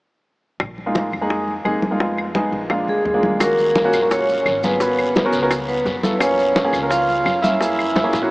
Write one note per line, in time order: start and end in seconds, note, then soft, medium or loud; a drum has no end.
0.60 1.09 A#1 medium
0.60 high bongo medium
0.60 high conga soft
0.60 claves soft
0.78 high conga soft
0.86 1.11 G#3 medium
0.86 1.11 A#3 medium
0.86 1.11 D#4 medium
0.86 1.11 F4 medium
0.95 high bongo soft
0.95 high conga medium
1.12 1.62 F2 medium
1.12 high bongo soft
1.12 high conga soft
1.12 claves soft
1.21 1.52 G#3 medium
1.21 1.52 A#3 medium
1.21 1.52 D#4 medium
1.21 1.52 G#4 medium
1.30 high bongo medium
1.30 high conga soft
1.48 high conga soft
1.65 2.47 F2 medium
1.65 1.83 G#3 medium
1.65 1.84 A#3 medium
1.65 1.84 D#4 medium
1.65 1.84 G#4 medium
1.65 high bongo soft
1.65 low bongo medium
1.65 high conga soft
1.65 claves medium
1.82 high bongo soft
1.82 high conga medium
1.91 1.97 G#3 medium
1.91 1.98 A#3 medium
1.91 1.98 D#4 medium
1.91 1.98 F4 medium
2.00 2.25 G#3 medium
2.00 2.25 B3 medium
2.00 2.25 D#4 medium
2.00 2.25 F4 medium
2.00 high bongo medium
2.00 high conga soft
2.18 high conga soft
2.18 claves medium
2.35 2.60 G#3 medium
2.35 2.60 B3 medium
2.35 2.60 D#4 medium
2.35 2.60 G#4 medium
2.35 high bongo medium
2.35 high conga medium
2.52 2.85 A#1 medium
2.52 high bongo soft
2.52 high conga soft
2.70 3.01 G#3 medium
2.70 3.01 A#3 medium
2.70 3.01 D4 medium
2.70 3.01 F4 medium
2.70 high bongo medium
2.70 high conga soft
2.70 claves soft
2.87 3.04 D2 medium
2.87 3.21 G#3 medium
2.87 3.21 G#4 medium
2.87 high conga soft
3.05 3.87 D#2 medium
3.05 high bongo soft
3.05 low bongo medium
3.05 high conga soft
3.14 3.40 G#3 medium
3.14 3.39 A#3 medium
3.14 3.41 D4 medium
3.14 3.39 F4 medium
3.23 high bongo soft
3.23 high conga medium
3.40 4.06 A#3 medium
3.40 3.71 A#3 medium
3.40 3.71 C#4 medium
3.40 3.71 F4 medium
3.40 3.71 F#4 medium
3.40 4.07 A#4 medium
3.40 high bongo medium
3.40 high conga soft
3.40 long guiro medium
3.40 claves medium
3.40 maracas medium
3.58 high conga soft
3.58 maracas soft
3.76 high bongo medium
3.76 high conga medium
3.76 short guiro medium
3.76 maracas soft
3.84 3.97 A#3 medium
3.84 3.97 C#4 medium
3.84 3.97 F4 medium
3.84 3.97 F#4 medium
3.93 4.42 A#1 medium
3.93 high bongo soft
3.93 high conga soft
3.93 short guiro medium
3.93 claves soft
3.93 maracas medium
4.02 4.45 A#3 medium
4.02 4.45 C#4 medium
4.02 4.45 F4 medium
4.02 4.45 F#4 medium
4.11 4.60 C#4 medium
4.11 4.60 C#5 medium
4.11 high bongo medium
4.11 high conga soft
4.11 long guiro medium
4.11 maracas medium
4.28 high conga soft
4.28 maracas soft
4.46 5.27 G#1 medium
4.46 high bongo soft
4.46 low bongo medium
4.46 high conga soft
4.46 short guiro medium
4.46 claves medium
4.46 maracas soft
4.63 4.76 A#3 medium
4.63 5.64 B3 medium
4.63 4.76 C#4 medium
4.63 4.76 F4 medium
4.63 4.76 G#4 medium
4.63 5.65 B4 medium
4.63 high bongo soft
4.63 high conga medium
4.63 short guiro medium
4.63 maracas medium
4.80 5.12 B3 medium
4.80 5.12 C#4 medium
4.80 5.12 F#4 medium
4.80 5.12 B4 medium
4.80 high bongo medium
4.80 high conga soft
4.80 long guiro medium
4.80 maracas medium
4.98 high conga soft
4.98 claves medium
4.98 maracas soft
5.15 high bongo medium
5.15 high conga medium
5.15 short guiro medium
5.15 maracas soft
5.25 5.37 B3 medium
5.25 5.37 C#4 medium
5.25 5.37 F#4 medium
5.25 5.37 A#4 medium
5.33 5.82 C#2 medium
5.33 high bongo soft
5.33 high conga soft
5.33 short guiro medium
5.33 maracas medium
5.42 5.51 B3 medium
5.42 5.51 C#4 medium
5.42 5.51 F#4 medium
5.42 5.51 A#4 medium
5.51 high bongo medium
5.51 high conga soft
5.51 long guiro medium
5.51 claves medium
5.51 maracas medium
5.67 6.00 B3 medium
5.67 6.01 B4 medium
5.67 high conga soft
5.67 maracas soft
5.85 6.67 F#2 medium
5.85 high bongo soft
5.85 low bongo medium
5.85 high conga soft
5.85 short guiro medium
5.85 maracas soft
6.03 6.16 B3 medium
6.03 6.16 E4 medium
6.03 6.16 F4 medium
6.03 6.16 A4 medium
6.03 high bongo soft
6.03 high conga medium
6.03 short guiro medium
6.03 maracas medium
6.19 6.51 A#3 medium
6.19 6.86 C#4 medium
6.19 6.52 C#4 medium
6.19 6.52 F4 medium
6.19 6.52 G#4 medium
6.19 6.87 C#5 medium
6.19 high bongo medium
6.19 high conga soft
6.19 long guiro medium
6.19 claves medium
6.19 maracas medium
6.38 high conga soft
6.38 maracas soft
6.56 high bongo medium
6.56 high conga medium
6.56 short guiro medium
6.56 maracas soft
6.64 6.77 A#3 medium
6.64 6.77 C#4 medium
6.64 6.77 F4 medium
6.64 6.77 G#4 loud
6.73 7.22 C#2 medium
6.73 high bongo soft
6.73 high conga soft
6.73 short guiro medium
6.73 claves medium
6.73 maracas medium
6.82 7.25 A#3 medium
6.82 7.25 C#4 medium
6.82 7.25 F4 medium
6.82 7.25 A#4 medium
6.89 7.39 F4 medium
6.89 7.45 F5 medium
6.89 high bongo medium
6.89 high conga soft
6.89 long guiro medium
6.89 maracas medium
7.09 high conga soft
7.09 maracas soft
7.25 8.07 F#2 medium
7.25 high bongo soft
7.25 low bongo medium
7.25 high conga soft
7.25 short guiro medium
7.25 claves medium
7.25 maracas soft
7.42 7.56 A#3 medium
7.42 7.56 C#4 medium
7.42 8.31 E4 medium
7.42 7.56 F4 medium
7.42 7.56 A#4 medium
7.42 8.31 E5 medium
7.42 high bongo soft
7.42 high conga medium
7.42 short guiro medium
7.42 maracas medium
7.61 7.91 A#3 medium
7.61 7.91 C#4 medium
7.61 7.92 E4 medium
7.61 7.92 G#4 medium
7.61 high bongo medium
7.61 high conga soft
7.61 long guiro medium
7.61 maracas medium
7.79 high conga soft
7.79 claves medium
7.79 maracas soft
7.96 high bongo medium
7.96 high conga medium
7.96 short guiro medium
7.96 maracas soft
8.04 8.17 A#3 medium
8.04 8.17 C#4 medium
8.04 8.17 E4 medium
8.04 8.17 G#4 medium
8.13 8.31 A#2 medium
8.13 high bongo medium
8.13 high conga soft
8.13 short guiro medium
8.13 maracas medium
8.22 8.31 A#3 medium
8.22 8.31 C#4 medium
8.22 8.31 E4 medium
8.22 8.31 F#4 medium